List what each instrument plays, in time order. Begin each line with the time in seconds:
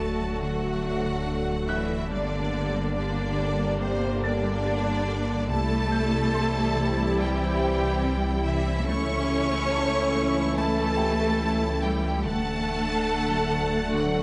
Already playing: sub bass D1, double bass section D2, trombone section D3 F#3, ambient pad F#3 A3 A4 D5, cello section A3, french horn section A3 A4, viola section A3 F#4, violin section A4 A5
0.00 synth pluck D3
0.21 synth pluck F#3
0.42 synth pluck D3, cello section F#3, violin section F#4 F#5
0.63 synth pluck F#3
0.84 synth pluck D4
1.06 synth pluck D3
1.27 synth pluck D4
1.68 synth pluck D3, cello section E3, violin section E4 E5, grand piano F#5 F#6
1.90 synth pluck D4
2.10 double bass section G1, sub bass G1, trombone section D3 G3, cello section D3, ambient pad G3 A#3 G4 D5, synth pluck G3, french horn section A#3 G4, viola section A#3 D4, violin section D4 D5
2.53 synth pluck D4
2.74 synth pluck G3
2.95 cello section D3, violin section D4 D5
3.16 synth pluck A#3
3.38 synth pluck G3
3.59 synth pluck A#3
3.80 cello section C3, synth pluck G3, violin section C4 C5
4.01 synth pluck A#3
4.22 cello section D3, violin section D4 D5, synth pluck G4, grand piano A6
4.44 synth pluck G3
4.65 synth pluck G4
5.08 synth pluck G3
5.29 synth pluck G4
5.48 double bass section C2, sub bass C2, synth pluck C3, trombone section E3 G3, ambient pad G3 C4 G4 E5, viola section G3 E4, cello section A3, french horn section C4 G4, violin section A4 A5
5.91 synth pluck G3, grand piano G6
6.13 synth pluck C3
6.34 grand piano C6
6.56 synth pluck E3
6.76 synth pluck C3
6.98 synth pluck E3
7.18 synth pluck C3, cello section G3, violin section G4 G5
7.40 synth pluck E3
7.61 synth pluck C4
7.82 synth pluck C3
8.04 synth pluck C4
8.44 synth pluck C3, cello section E3, violin section E4 E5
8.68 synth pluck C4
8.86 double bass section C#2, sub bass C#2, ambient pad E3 C#4 A4 E5, trombone section E3 A3, viola section A3 E4, synth pluck A3, french horn section C#4 E4, cello section C#4, violin section C#5 C#6
9.31 synth pluck E4
9.53 synth pluck A3
9.72 grand piano A5
9.95 synth pluck C#4
10.16 synth pluck A3
10.36 synth pluck C#4
10.56 cello section A3, synth pluck A3, violin section A4 A5
10.79 synth pluck C#4
10.97 grand piano G4 G5, synth pluck A4
11.21 synth pluck A3
11.42 synth pluck A4
11.82 cello section G3, synth pluck A3, violin section G4 G5
12.05 synth pluck A4
12.24 sub bass D1, double bass section D2, synth pluck D3, trombone section D3 A3, ambient pad A3 D4 A4 D5, cello section A3, viola section A3 F#5, french horn section D4 A4, violin section A4 A5
12.67 synth pluck A3
12.88 synth pluck D3
13.31 synth pluck F#3
13.51 synth pluck D3
13.73 synth pluck F#3
13.93 synth pluck D3, cello section F#3, violin section F#4 F#5
14.15 synth pluck F#3